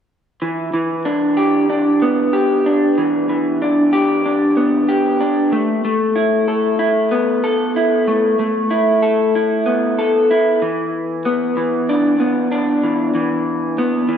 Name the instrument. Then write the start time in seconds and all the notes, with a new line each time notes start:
clean electric guitar
0.42 E3
0.73 E3
1.05 D4
1.37 G4
1.70 D4
2.02 B3
2.33 G4
2.66 D4
2.98 E3
3.29 E3
3.62 D4
3.93 G4
4.26 D4
4.57 B3
4.89 G4
5.21 D4
5.52 A3
5.85 A3
6.16 E4
6.48 A4
6.79 E4
7.11 B3
7.44 A4
7.76 E4
8.07 A3
8.39 A3
8.70 E4
9.02 A4
9.35 E4
9.66 B3
9.99 A4
10.31 E4
10.62 E3
11.25 B3
11.57 E3
11.89 D4
12.20 B3
12.52 D4
12.83 E3
13.15 E3
13.78 B3
14.08 E3